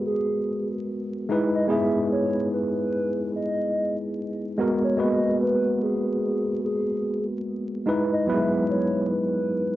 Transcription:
Already playing: tine electric piano G#3 B3 F#4 A#4 B4
0.06 soft synth lead G#4
1.29 tine electric piano G#3 D#4 E4 B4
1.55 soft synth lead D#5
1.67 tine electric piano G#3 B3 E4 G#4
1.72 soft synth lead E5
2.12 soft synth lead C#5
2.53 soft synth lead B4
3.36 soft synth lead D#5
4.58 tine electric piano G#3 B3 F#4 A#4
4.84 soft synth lead C#5
4.97 tine electric piano G#3 A#3 F#4 B4
5.01 tine electric piano B3, soft synth lead D#5
5.42 soft synth lead B4
5.83 soft synth lead G#4
6.65 soft synth lead G#4
7.86 tine electric piano G#3 D#4 E4 B4
8.13 soft synth lead D#5
8.27 tine electric piano F#3 B3 E4 B4, soft synth lead E5
8.33 tine electric piano G#3
8.70 soft synth lead C#5
9.12 soft synth lead B4

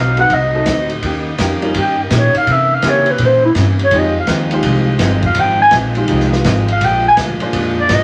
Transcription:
Already playing: upright bass B1, hollow-body jazz guitar A2 F#3 C4 D#4, saxophone section F#3 A3 C4 D#4, clarinet F5
0.17 grand piano A3 C4 D#4 F#4 B4, clarinet F#5, ride
0.29 upright bass C2, hollow-body jazz guitar A2 F#3 C4 D#4, kick, ride
0.34 clarinet D#5
0.54 grand piano A3 C4 D#4 F#4 A4
0.66 upright bass D2, hollow-body jazz guitar A2 F#3 C4 D#4, kick, snare, hi-hat pedal, ride
0.89 ride
1.02 upright bass D#2, hollow-body jazz guitar D#3 A#3 C#4 G4, saxophone section D#3 G3 A#3, kick, ride
1.38 upright bass F2, hollow-body jazz guitar D#3 A#3 C#4 G4, kick, snare, hi-hat pedal, ride
1.62 grand piano G3 C#4 D#4 F4 A#4, ride
1.74 upright bass G2, hollow-body jazz guitar D#3 A#3 C#4 G4, kick, ride
1.80 clarinet G5
2.03 clarinet A#4
2.10 upright bass A#2, hollow-body jazz guitar D#3 A#3 C#4 G4, kick, snare, hi-hat pedal, ride
2.16 clarinet C#5
2.34 clarinet F5, muted upright bass stroke, ride
2.47 upright bass C3, hollow-body jazz guitar C3 E3 A#3 C#4, saxophone section E3 C4, kick, ride
2.51 clarinet E5
2.75 clarinet F5
2.82 hollow-body jazz guitar C3 E3 A#3, upright bass C#3, grand piano A#3 C#4 E4 G4 C5, kick, snare, hi-hat pedal, ride
2.86 hollow-body jazz guitar C#4, clarinet C#5
3.06 ride
3.10 clarinet B4
3.18 upright bass A#2, hollow-body jazz guitar C3 E3, kick, ride
3.22 hollow-body jazz guitar A#3 C#4, clarinet C5
3.45 clarinet E4
3.55 upright bass G2, hollow-body jazz guitar C3 E3 A#3 C#4, kick, snare, hi-hat pedal, ride
3.79 ride
3.84 clarinet C#5
3.89 upright bass F2, hollow-body jazz guitar F2 D#3, saxophone section D#3 G#3 C4 F4, grand piano G#3 D#4 F4 G4, kick, ride
3.94 hollow-body jazz guitar G#3 C4, grand piano C5
3.98 clarinet D#5
4.20 clarinet F5
4.27 upright bass D#2, hollow-body jazz guitar F2 D#3 G#3 C4, kick, snare, hi-hat pedal, ride
4.51 grand piano G#3 D#4 F4 G4 C5, ride
4.63 upright bass C2, hollow-body jazz guitar F2 D#3 G#3, kick, ride
4.67 hollow-body jazz guitar C4
4.99 upright bass G1, hollow-body jazz guitar F2 D#3 G#3 C4, kick, snare, hi-hat pedal, ride
5.22 clarinet F5, kick, ride
5.35 upright bass G#1, hollow-body jazz guitar F2 D#3 G#3, kick, ride
5.39 hollow-body jazz guitar C4, clarinet G5
5.62 clarinet G#5
5.71 upright bass A#1, hollow-body jazz guitar F2 D#3 G#3 C4, kick, snare, hi-hat pedal, ride
5.95 grand piano G#3 D#4 F4 G4 C5, ride
6.08 upright bass C2, hollow-body jazz guitar F2 D#3 G#3, kick, ride
6.12 hollow-body jazz guitar C4
6.20 snare
6.33 snare
6.44 upright bass G#1, hollow-body jazz guitar F2 D#3 G#3 C4, kick, snare, hi-hat pedal, ride
6.68 clarinet F5, ride
6.80 upright bass A#1, hollow-body jazz guitar A#2 F3 G#3, saxophone section D3 A#3, kick, ride
6.84 hollow-body jazz guitar D4, clarinet G5
7.08 clarinet G#5
7.17 upright bass D2, hollow-body jazz guitar A#2 F3 G#3, kick, snare, hi-hat pedal, ride
7.21 hollow-body jazz guitar D4
7.40 grand piano A#3 D4 F4 G#4 C5, muted upright bass stroke, ride
7.53 upright bass F2, hollow-body jazz guitar A#2 F3 G#3, kick, ride
7.57 hollow-body jazz guitar D4
7.80 clarinet D5
7.89 upright bass G#2, hollow-body jazz guitar A#2 F3 G#3 D4, kick, snare, hi-hat pedal, ride
7.93 clarinet D#5

